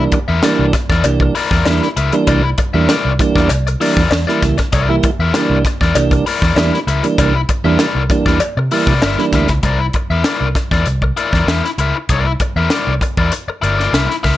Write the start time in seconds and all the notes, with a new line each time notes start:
Already playing: E3 G3
0.00 A#3 D4
0.12 muted overdriven electric guitar stroke, kick, closed hi-hat
0.28 E2 E4 A#4 E5
0.42 E3 G3 A#3 D4 E4 A#4 D5, snare, closed hi-hat, cowbell
0.59 C2
0.73 muted overdriven electric guitar stroke, kick, snare, closed hi-hat
0.90 E2 E4 A#4 D5, kick, snare
1.04 C2 E3 G3 A#3 D4, muted overdriven electric guitar stroke, closed hi-hat, cowbell
1.20 muted overdriven electric guitar stroke, kick
1.35 E4 A#4 D5, open hi-hat
1.51 E2 E4 A#4 D5, kick, snare
1.65 E2 E3 G3 A#3 D4 E4 A#4 E5, snare, closed hi-hat, cowbell
1.83 muted overdriven electric guitar stroke, snare
1.97 C#2 E4 A#4 E5, closed hi-hat
2.12 E3 G3 A#3 D4, muted overdriven electric guitar stroke, closed hi-hat
2.27 C2 E4 A#4 D5, kick, closed hi-hat, cowbell
2.44 muted overdriven electric guitar stroke
2.58 muted overdriven electric guitar stroke, kick, closed hi-hat
2.74 E2 E3 G3 A#3 D4 E4 A#4 E5
2.89 E4 A#4 D5, snare, closed hi-hat, cowbell
3.05 C2
3.19 E3 G3 A#3 D4, muted overdriven electric guitar stroke, kick, closed hi-hat
3.36 E2 E4 A#4 D5, kick, snare
3.49 C2, muted overdriven electric guitar stroke, closed hi-hat, cowbell
3.67 muted overdriven electric guitar stroke, closed hi-hat
3.80 E3 G3 A#3 D4 E4 A#4 D5, open hi-hat
3.96 E2 E4 A#4 D5, kick, snare
4.11 E2, muted overdriven electric guitar stroke, snare, closed hi-hat, cowbell
4.27 E3 G3 A#3 E4 A#4 D5, snare
4.42 C#2, muted overdriven electric guitar stroke, kick, snare, closed hi-hat
4.58 muted overdriven electric guitar stroke, kick, snare, closed hi-hat
4.72 C2 E4 A#4 D5, kick, closed hi-hat, cowbell
4.89 E3 G3 A#3 E4, muted overdriven electric guitar stroke
5.03 muted overdriven electric guitar stroke, kick, closed hi-hat
5.19 E2 E4 A#4 E5
5.33 E3 G3 A#3 D4 E4 A#4 D5, snare, closed hi-hat, cowbell
5.50 C2
5.65 muted overdriven electric guitar stroke, kick, snare, closed hi-hat
5.81 E2 E4 A#4 D5, kick, snare
5.95 C2 E3 G3 A#3 D4, muted overdriven electric guitar stroke, closed hi-hat, cowbell
6.11 muted overdriven electric guitar stroke, kick, closed hi-hat
6.26 E4 A#4 D5, open hi-hat
6.42 E2 E4 A#4 D5, kick, snare
6.56 E2 E3 G3 A#3 D4 E4 A#4 E5, snare, closed hi-hat, cowbell
6.74 muted overdriven electric guitar stroke, snare
6.87 C#2 E4 A#4 E5, closed hi-hat
7.03 E3 G3 A#3 D4, muted overdriven electric guitar stroke, closed hi-hat
7.18 C2 E4 A#4 D5, kick, closed hi-hat, cowbell
7.35 muted overdriven electric guitar stroke
7.49 muted overdriven electric guitar stroke, kick, closed hi-hat
7.64 E2 E3 G3 A#3 D4 E4 A#4 E5
7.79 E4 A#4 D5, snare, closed hi-hat, cowbell
7.95 C2
8.10 E3 G3 A#3 D4, muted overdriven electric guitar stroke, kick, closed hi-hat
8.26 E2 E4 A#4 D5, kick, snare
8.40 muted overdriven electric guitar stroke, closed hi-hat, cowbell
8.57 C3, muted overdriven electric guitar stroke
8.71 E3 G3 A#3 E4 A#4 D5, open hi-hat
8.87 C3 E4 A#4 D5, kick, snare
9.02 G1 E4 A#4 E5, snare, closed hi-hat, cowbell
9.18 E3 G3 A#3 D4, muted overdriven electric guitar stroke, snare
9.32 D2 E4 A#4 E5, kick, snare, closed hi-hat
9.48 C#2, muted overdriven electric guitar stroke, kick, snare, closed hi-hat
9.63 C2 E4 A#4 D5, kick, closed hi-hat
9.80 muted overdriven electric guitar stroke
9.93 muted overdriven electric guitar stroke, kick, closed hi-hat
10.10 E2 E4 A#4 E5
10.24 E4 A#4 D5, snare, closed hi-hat
10.41 C2
10.55 muted overdriven electric guitar stroke, kick, snare, closed hi-hat
10.71 E2 E4 A#4 D5, kick, snare
10.86 C2, muted overdriven electric guitar stroke, closed hi-hat
11.02 muted overdriven electric guitar stroke, kick
11.17 E4 A#4 D5, closed hi-hat
11.33 E2 E4 A#4 D5, kick, snare
11.47 E2 E4 A#4 E5, snare, closed hi-hat
11.65 muted overdriven electric guitar stroke, snare
11.78 C#2 E4 A#4 E5, closed hi-hat
11.96 muted overdriven electric guitar stroke
12.09 C2 E4 A#4 D5, kick, closed hi-hat
12.26 muted overdriven electric guitar stroke
12.40 muted overdriven electric guitar stroke, kick, closed hi-hat
12.56 E2 E4 A#4 E5
12.70 E4 A#4 D5, snare, closed hi-hat
12.87 C2
13.01 muted overdriven electric guitar stroke, kick, closed hi-hat
13.17 E2 E4 A#4 D5, kick
13.32 muted overdriven electric guitar stroke, closed hi-hat
13.48 muted fingered electric bass stroke, muted overdriven electric guitar stroke
13.62 G1 E4 A#4 D5, closed hi-hat
13.78 E4 A#4 D5, snare
13.93 C2 E4 A#4 E5, snare, closed hi-hat
14.09 muted overdriven electric guitar stroke, snare
14.23 C#2 E4 A#4 E5, kick, snare, open hi-hat